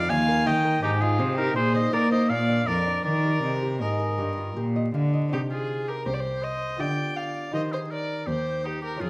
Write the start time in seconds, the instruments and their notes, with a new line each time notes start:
Already playing: cello F2, violin D5, oboe F5
0.09 cello D#2, lute D#2, violin F5, oboe G#5
0.28 lute A#4
0.46 cello D#3, lute D#3 D#5, violin D#5, oboe G5
0.65 lute A#4
0.83 cello G#2, lute G#2, violin D#4, oboe G4
1.01 lute D#4, violin F4, oboe G#4
1.19 lute C3 C5, cello C3
1.37 lute D#4, violin G4, oboe A#4
1.56 lute A#2, cello A#2, violin G#4, oboe C5
1.74 lute D#4, violin C5, oboe D#5
1.93 lute A#3 A#4, cello A#3, violin A#4, oboe D5
2.11 lute D#4, violin C5, oboe D#5
2.30 cello A#2, lute A#2, violin D5, oboe F5
2.49 lute D4
2.67 cello F2, lute F2 A#4, violin A#4, oboe D5
2.87 lute D4
3.05 cello D#3, lute D#3, violin A#4, oboe D5
3.25 lute G4
3.43 cello C3, lute C3 D#5
3.62 lute G4
3.81 lute G#2 D#5, cello G#2, violin A#4, oboe D#5
3.99 lute A#4
4.18 lute G2 G4, cello G2
4.37 lute F4
4.56 lute A#2 G4, cello A#2
4.76 lute D#5
4.94 lute D3 F5, cello D3
5.13 lute D#5
5.28 lute C4 D#4 G4
5.32 lute C3, cello C3, oboe D#4, violin G4
5.50 oboe F4, violin G#4
5.88 oboe G4, violin A#4
6.05 cello C2, oboe G4, violin C5
6.13 violin D5
6.20 violin C5
6.42 oboe C5, violin D#5
6.77 cello D3, lute B3 F4 G4, oboe D5, violin G5
6.81 lute D3
7.16 oboe D5, violin F5
7.51 cello D#3, lute D#3 D#4 G4, oboe C5, violin D#5
7.72 oboe G#4, violin C5
7.91 oboe A#4, violin D5
8.27 cello D#2, lute D#2, oboe G4, violin C5
8.64 oboe D#4, violin G4
8.82 oboe G4, violin A#4
8.96 lute G#3 C#4 F4
9.00 lute F2, cello F2, oboe F4, violin G#4